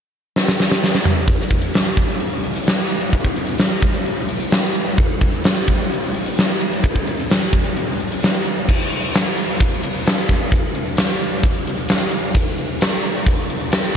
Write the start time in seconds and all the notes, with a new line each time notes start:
0.36 snare
0.48 snare
0.60 snare
0.72 snare
0.84 snare
0.95 snare
1.05 mid tom
1.28 kick, closed hi-hat
1.40 snare
1.50 kick, closed hi-hat
1.62 closed hi-hat
1.74 snare, closed hi-hat
1.97 kick, closed hi-hat
2.20 closed hi-hat
2.44 closed hi-hat
2.56 closed hi-hat
2.67 snare, closed hi-hat
2.90 closed hi-hat
3.01 closed hi-hat
3.13 kick, closed hi-hat
3.25 kick
3.36 closed hi-hat
3.47 closed hi-hat
3.58 snare, closed hi-hat
3.82 kick, closed hi-hat
3.94 closed hi-hat
4.06 closed hi-hat
4.29 closed hi-hat
4.41 closed hi-hat
4.51 snare, closed hi-hat
4.75 closed hi-hat
4.97 kick, closed hi-hat
5.21 kick, closed hi-hat
5.32 closed hi-hat
5.44 snare, closed hi-hat
5.68 kick, closed hi-hat
5.92 closed hi-hat
6.14 closed hi-hat
6.26 closed hi-hat
6.38 snare, closed hi-hat
6.61 closed hi-hat
6.73 closed hi-hat
6.84 kick, closed hi-hat
6.95 kick
7.07 closed hi-hat
7.20 closed hi-hat
7.30 snare, closed hi-hat
7.53 kick, closed hi-hat
7.64 closed hi-hat
7.77 closed hi-hat
8.00 closed hi-hat
8.12 closed hi-hat
8.23 snare, closed hi-hat
8.46 closed hi-hat
8.69 kick, crash
8.92 closed hi-hat
9.14 snare, closed hi-hat
9.38 closed hi-hat
9.60 kick, closed hi-hat
9.83 closed hi-hat
10.06 snare, closed hi-hat
10.29 kick, snare, closed hi-hat
10.52 kick, closed hi-hat
10.75 closed hi-hat
10.97 snare, closed hi-hat
11.21 closed hi-hat
11.43 kick, closed hi-hat
11.67 closed hi-hat
11.89 snare, closed hi-hat
12.11 closed hi-hat
12.35 kick, closed hi-hat
12.58 closed hi-hat
12.81 snare, closed hi-hat
13.04 closed hi-hat
13.27 kick, closed hi-hat
13.50 closed hi-hat
13.72 snare, closed hi-hat